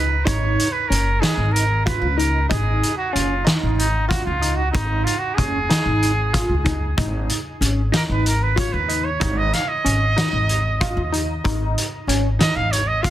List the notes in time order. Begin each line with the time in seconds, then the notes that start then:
Already playing: C#2 D#4 B4
0.25 G#1 D#4 C#5, kick, closed hi-hat
0.59 closed hi-hat
0.72 B4
0.88 F#1 C#4 A#4, closed hi-hat
1.21 D#4 G#4, snare, closed hi-hat
1.37 G#1
1.52 A#4, closed hi-hat
1.86 F4 B4, kick, closed hi-hat
2.02 C#2
2.17 D#4 A#4, closed hi-hat
2.49 G#1 D#4 G#4, kick, closed hi-hat
2.83 closed hi-hat
2.97 F#4
3.13 F#1 C#4 F4, closed hi-hat
3.45 D#4, snare, closed hi-hat
3.63 G#1
3.76 D#4, closed hi-hat
4.08 F4 F#4, kick, snare, closed hi-hat
4.25 C#2 F4
4.41 D#4, closed hi-hat
4.56 F#4
4.71 G#1 D#4, kick, closed hi-hat
5.04 F4, closed hi-hat
5.18 F#4
5.35 F#1 C#4 G#4, kick, closed hi-hat
5.69 D#4, snare, closed hi-hat
5.86 G#1
6.03 closed hi-hat
6.33 F4, kick, snare, closed hi-hat
6.49 C#2
6.65 D#4, kick, closed hi-hat
6.97 G#1 D#4, kick, closed hi-hat
7.29 closed hi-hat
7.61 G#1 C#4, closed hi-hat
7.92 D#4 A#4, snare, closed hi-hat
8.09 G#1 B4
8.26 A#4, closed hi-hat
8.43 B4
8.56 F4 C#5, kick, closed hi-hat
8.73 D#2 B4
8.88 D#4, closed hi-hat
9.04 C#5
9.20 G#1 D#4, kick, closed hi-hat
9.37 D#5
9.53 F5, snare, closed hi-hat
9.68 D#5
9.84 G#1 C#4, closed hi-hat
10.16 D#4, snare, closed hi-hat
10.33 G#1
10.49 closed hi-hat
10.81 F4, kick, closed hi-hat
10.97 D#2
11.12 D#4, closed hi-hat
11.44 G#1 D#4, kick, closed hi-hat
11.78 closed hi-hat
12.07 G#1 C#4, closed hi-hat
12.39 D#4 D#5, snare, closed hi-hat
12.56 G#1 F5
12.72 C#5, closed hi-hat
12.87 D#5
13.03 F4 F5, kick, closed hi-hat